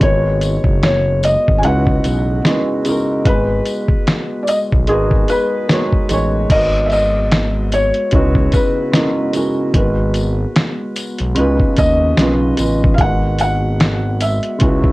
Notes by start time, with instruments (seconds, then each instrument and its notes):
Already playing: glass harmonica B3
0.00 analog synth bass G#1, upright piano G#3 D#4 F#4 A#4, glass harmonica G#3 F#4, felt piano C#5, kick, closed hi-hat
0.04 upright piano B4
0.41 closed hi-hat, tambourine
0.64 analog synth bass F#1, kick
0.83 felt piano C#5, snare, closed hi-hat
1.23 felt piano D#5, closed hi-hat, tambourine
1.48 analog synth bass G#1, kick
1.58 upright piano C#3 G#3, felt piano G#5
1.63 analog synth bass C#2, upright piano D#4 E4 F#4 B4, glass harmonica F#4 D#5, felt piano F#5, closed hi-hat
1.87 kick
2.04 analog synth bass B1, closed hi-hat, tambourine
2.44 upright piano C#3 G#3 D#4 E4 F#4, snare, closed hi-hat
2.48 upright piano B4
2.85 upright piano C#3 G#3 D#4 E4 F#4, closed hi-hat, tambourine
2.89 upright piano A#4
3.25 analog synth bass G#1, upright piano G#3 D#4 F#4 G#4, glass harmonica G#3 F#4, felt piano B4, kick, closed hi-hat
3.29 upright piano B4
3.66 closed hi-hat, tambourine
3.88 kick
4.07 snare, closed hi-hat
4.43 felt piano D5
4.47 felt piano D#5, closed hi-hat, tambourine
4.72 analog synth bass B1, kick
4.87 analog synth bass G#1, upright piano G#3 D#4 F#4 A#4 B4, glass harmonica G#3, felt piano G#4, closed hi-hat
5.11 kick
5.28 felt piano B4, closed hi-hat, tambourine
5.68 upright piano G#3 D#4 F#4 A#4, snare, closed hi-hat
5.72 upright piano C#5
5.92 kick
6.09 analog synth bass A1, upright piano G#3 D#4 F#4 A#4, closed hi-hat, tambourine
6.13 upright piano C#5
6.50 analog synth bass G#1, glass harmonica G#3 B3 F#4, upright piano G#3 D#4 F#4, felt piano D#5, kick, closed hi-hat, crash
6.54 upright piano A#4 B4
6.86 felt piano E5, closed hi-hat
6.92 felt piano D#5, tambourine
7.31 snare, closed hi-hat
7.72 felt piano C#5, closed hi-hat, tambourine
7.94 closed hi-hat
8.11 analog synth bass C#2, upright piano C#3 G#3 D#4 E4, glass harmonica F#4 D#5, kick, closed hi-hat
8.15 upright piano F#4 B4
8.35 kick
8.52 felt piano B4, kick, closed hi-hat, tambourine
8.92 upright piano C#3 G#3 D#4 E4 F#4, snare, closed hi-hat
8.96 upright piano A#4
9.33 upright piano C#3 G#3 D#4 E4 F#4, closed hi-hat, tambourine
9.37 upright piano A#4
9.73 analog synth bass G#1, upright piano G#3 D#4 F#4 A#4, glass harmonica G#3 F#4, kick, closed hi-hat
9.77 upright piano B4
10.14 closed hi-hat, tambourine
10.56 snare, closed hi-hat
10.96 closed hi-hat, tambourine
11.18 analog synth bass B1, closed hi-hat
11.35 analog synth bass C#2, upright piano C#3 C#4 D#4 F4, glass harmonica D#4 F4, closed hi-hat
11.39 upright piano B4
11.59 analog synth bass D#2, kick
11.76 analog synth bass D#2, felt piano D#5, kick, closed hi-hat, tambourine
12.17 analog synth bass B1, upright piano C#3 C#4 D#4 F4, snare, closed hi-hat
12.21 upright piano B4
12.57 analog synth bass A1, upright piano C#3 C#4 D#4 F4, closed hi-hat, tambourine
12.61 upright piano B4
12.84 kick
12.94 upright piano G#3, felt piano F5
12.98 analog synth bass G#1, glass harmonica G#3 F#4, upright piano D#4 F#4 A#4, felt piano F#5, kick, closed hi-hat
13.02 upright piano B4
13.38 felt piano F#5, closed hi-hat, tambourine
13.80 snare, closed hi-hat
14.20 felt piano E5, closed hi-hat, tambourine
14.43 closed hi-hat
14.59 analog synth bass C#2, upright piano C#3 G#3 C#4 E4 F#4, glass harmonica B3 C#4 E4 F#4, kick, closed hi-hat
14.63 upright piano B4
14.84 kick